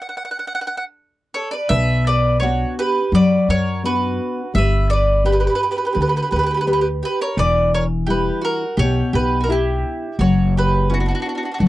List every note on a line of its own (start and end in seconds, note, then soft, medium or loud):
0.02 0.08 F#5 soft
0.09 0.16 F#5 soft
0.17 0.23 F#5 medium
0.25 0.30 F#5 medium
0.31 0.38 F#5 medium
0.39 0.46 F#5 soft
0.47 0.54 F#5 medium
0.55 0.60 F#5 medium
0.61 0.66 F#5 medium
0.67 0.75 F#5 medium
0.77 0.84 F#5 medium
1.34 1.51 A4 medium
1.34 1.51 C#5 medium
1.51 1.69 B4 medium
1.51 1.70 D5 medium
1.69 2.63 B1 loud
1.69 2.39 B2 medium
1.69 2.04 B4 medium
1.69 2.07 E5 loud
2.07 2.40 B4 medium
2.07 2.39 D5 medium
2.40 2.98 B3 soft
2.40 2.99 D4 soft
2.40 2.76 F#4 medium
2.40 2.74 C#5 medium
2.40 2.98 F#5 medium
2.79 3.11 G4 medium
2.79 3.11 B4 medium
3.12 3.36 F#2 loud
3.12 3.82 F#3 medium
3.12 3.47 B4 medium
3.12 3.47 D5 loud
3.49 4.17 F#2 medium
3.49 3.82 A#4 medium
3.49 3.82 C#5 loud
3.84 4.40 B3 medium
3.84 4.41 D4 medium
3.84 4.41 F#4 medium
3.84 4.52 F#4 medium
3.84 4.51 B4 medium
4.54 5.46 G1 loud
4.54 5.22 G3 medium
4.54 4.88 E5 medium
4.58 4.90 B4 medium
4.90 5.24 B4 medium
4.90 5.22 D5 medium
5.24 5.81 D4 soft
5.24 5.81 G4 soft
5.24 5.31 G4 medium
5.24 5.81 B4 soft
5.24 5.32 B4 medium
5.32 5.39 G4 medium
5.32 5.39 B4 medium
5.40 5.47 G4 medium
5.40 5.46 B4 soft
5.47 5.55 G4 soft
5.47 5.54 B4 medium
5.55 5.63 G4 medium
5.55 5.62 B4 medium
5.63 5.70 G4 soft
5.63 5.69 B4 medium
5.71 5.75 G4 soft
5.71 5.77 B4 medium
5.77 5.83 G4 soft
5.77 5.84 B4 medium
5.85 5.91 G4 soft
5.85 5.92 B4 medium
5.93 6.19 D2 medium
5.93 6.64 D3 medium
5.93 5.99 G4 soft
5.93 6.00 B4 soft
6.01 6.06 G4 soft
6.01 6.07 B4 medium
6.08 6.14 G4 soft
6.08 6.14 B4 medium
6.16 6.22 G4 soft
6.16 6.21 B4 medium
6.22 6.29 G4 soft
6.22 6.28 B4 medium
6.31 7.00 D2 medium
6.31 6.35 G4 soft
6.31 6.37 B4 medium
6.36 6.42 G4 medium
6.36 6.44 B4 medium
6.43 6.50 G4 medium
6.43 6.51 B4 medium
6.51 6.56 G4 medium
6.51 6.59 B4 medium
6.57 6.64 G4 medium
6.57 6.66 B4 medium
6.67 7.23 D4 medium
6.67 7.23 G4 medium
6.67 6.72 G4 soft
6.67 7.23 B4 medium
6.67 6.72 B4 medium
6.73 6.79 G4 medium
6.73 6.79 B4 medium
6.81 6.87 G4 soft
6.81 6.87 B4 medium
7.03 7.18 G4 medium
7.03 7.21 B4 medium
7.21 7.36 A#4 medium
7.21 7.37 C#5 medium
7.37 8.29 E1 medium
7.37 8.05 E3 medium
7.37 7.70 B4 medium
7.37 7.71 D5 loud
7.74 7.83 A#4 medium
7.74 7.84 C#5 medium
8.07 8.64 G3 soft
8.07 8.64 D4 medium
8.07 8.64 E4 soft
8.07 8.40 G4 medium
8.07 8.42 B4 medium
8.42 8.74 F#4 medium
8.42 8.76 A#4 medium
8.77 9.01 B1 medium
8.77 9.47 B2 medium
8.77 9.11 G4 medium
8.77 9.12 C#5 loud
9.13 9.82 B1 medium
9.13 9.40 G4 medium
9.13 9.41 B4 medium
9.41 9.47 F#4 soft
9.41 9.49 A#4 medium
9.48 10.05 D4 medium
9.48 10.05 E4 soft
9.48 10.16 E4 medium
9.48 10.06 G4 medium
9.48 10.23 G4 medium
10.19 11.11 F#1 loud
10.19 10.89 F#3 medium
10.19 10.53 F#4 medium
10.19 10.54 C#5 medium
10.57 10.89 G4 medium
10.57 10.93 B4 medium
10.90 11.47 B3 soft
10.90 10.97 C#4 medium
10.90 11.47 E4 soft
10.90 11.47 F#4 soft
10.94 10.99 F#4 medium
11.00 11.05 D4 soft
11.00 11.06 F#4 soft
11.06 11.10 D4 soft
11.06 11.14 F#4 medium
11.11 11.19 D4 soft
11.11 11.21 F#4 medium
11.20 11.25 D4 soft
11.20 11.28 F#4 medium
11.26 11.33 D4 soft
11.26 11.35 F#4 medium
11.35 11.42 D4 soft
11.35 11.43 F#4 medium
11.43 11.49 D4 soft
11.43 11.51 F#4 soft
11.52 11.57 D4 soft
11.52 11.59 F#4 medium
11.58 11.68 F#1 medium
11.58 11.68 F#3 medium
11.58 11.64 D4 soft
11.58 11.65 F#4 soft